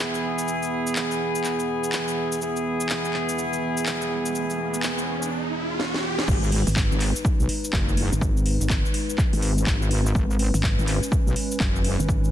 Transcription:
Already playing: analog synth pad E3 B3 G#4, horn section B3 E4 G#4
0.00 shaker
0.14 shaker
0.39 shaker
0.48 shaker
0.63 shaker
0.87 shaker
0.96 clap, shaker
1.11 shaker
1.35 shaker
1.44 clap, shaker
1.60 shaker
1.84 shaker
1.92 clap, shaker
2.08 shaker
2.32 shaker
2.41 horn section B3 E4 G#4, riser, shaker
2.56 shaker
2.81 shaker
2.89 clap, shaker
3.05 shaker
3.13 clap
3.29 shaker
3.38 shaker
3.53 shaker
3.77 shaker
3.86 clap, shaker
4.01 shaker
4.26 shaker
4.35 shaker
4.50 shaker
4.74 shaker
4.83 clap, shaker
4.98 shaker
5.22 shaker
5.80 snare
5.94 snare
6.19 snare
6.28 wobble bass G#1, analog synth pad G#3 D#4 B4, kick, crash, shaker
6.44 shaker
6.52 open hi-hat
6.67 wobble bass G#1, open hi-hat, shaker
6.76 kick, clap, shaker
6.91 wobble bass G#1, shaker
7.01 clap, open hi-hat
7.16 shaker
7.25 kick, shaker
7.40 wobble bass B1, shaker
7.49 open hi-hat
7.64 shaker
7.73 wobble bass F#1, kick, clap, shaker
7.89 shaker
7.97 open hi-hat
8.12 wobble bass G#1, shaker
8.21 kick, shaker
8.37 shaker
8.46 open hi-hat
8.60 wobble bass G#1, shaker
8.70 kick, clap, shaker
8.85 shaker
8.94 open hi-hat
9.10 shaker
9.18 kick, clap, shaker
9.33 wobble bass G#1, open hi-hat, shaker
9.42 open hi-hat
9.58 shaker
9.67 wobble bass G#1, kick, clap, shaker
9.82 shaker
9.91 open hi-hat
10.06 shaker
10.15 wobble bass G#1, analog synth pad C#4, kick, shaker
10.31 shaker
10.39 open hi-hat
10.54 wobble bass G#1, open hi-hat, shaker
10.63 kick, clap, shaker
10.78 wobble bass G#1, shaker
10.88 clap, open hi-hat
11.03 shaker
11.12 kick, shaker
11.27 wobble bass B1, shaker
11.36 open hi-hat
11.52 shaker
11.60 wobble bass F#1, kick, clap, shaker
11.76 shaker
11.84 open hi-hat
11.99 wobble bass G#1, shaker
12.09 kick, shaker
12.24 shaker

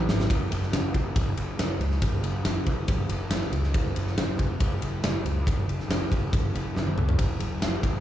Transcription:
0.09 picked electric bass G#1, snare
0.20 snare
0.30 picked electric bass F#1, kick, ride
0.51 picked electric bass F#1, ride
0.63 snare
0.72 picked electric bass F#1, snare, ride
0.94 picked electric bass F#1, kick, ride
1.16 picked electric bass F#1, kick, ride
1.37 picked electric bass F#1, ride
1.58 picked electric bass F#1, snare, ride
1.79 picked electric bass C#2, ride
1.91 snare
2.02 picked electric bass F#1, kick, ride
2.22 picked electric bass F#1, ride
2.45 picked electric bass F#1, snare, ride
2.66 picked electric bass F#1, kick, ride
2.88 picked electric bass F#1, kick, ride
3.09 picked electric bass F#1, ride
3.30 picked electric bass F#1, snare, ride
3.52 picked electric bass C#2, ride
3.64 snare
3.74 picked electric bass F#1, kick, ride
3.96 picked electric bass F#1, ride
4.07 snare
4.17 picked electric bass F#1, snare, ride
4.39 picked electric bass F#1, kick, ride
4.60 picked electric bass F#1, kick, ride
4.82 picked electric bass F#1, ride
5.04 picked electric bass F#1, snare, ride
5.25 picked electric bass C#2, ride
5.47 picked electric bass F#1, kick, ride
5.68 picked electric bass F#1, ride
5.80 snare
5.89 picked electric bass F#1, snare, ride
6.11 picked electric bass F#1, kick, ride
6.33 picked electric bass F#1, kick, ride
6.54 picked electric bass F#1, ride
6.75 picked electric bass F#1, snare
6.87 high tom
6.97 picked electric bass C#2, mid tom
7.09 floor tom
7.19 picked electric bass F#1, kick, ride, splash
7.39 picked electric bass F#1, ride
7.61 picked electric bass F#1, snare, ride
7.83 picked electric bass F#1, kick, ride

